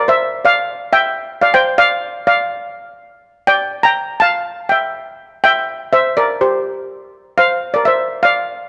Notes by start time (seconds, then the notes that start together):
0.08 C5 E5
0.45 D5 F5
0.93 E5 G5
1.42 D5 F5
1.54 C5 G5
1.78 D5 F5
2.27 D5 F5
3.47 D5 G5
3.83 G5 A#5
4.20 F5 A5
4.69 E5 G5
5.44 E5 G5
5.93 C5 E5
6.17 A#4 D5
6.41 G4 C5
7.38 C5 F5
7.74 A#4 D5
7.85 C5 E5
8.23 D5 F5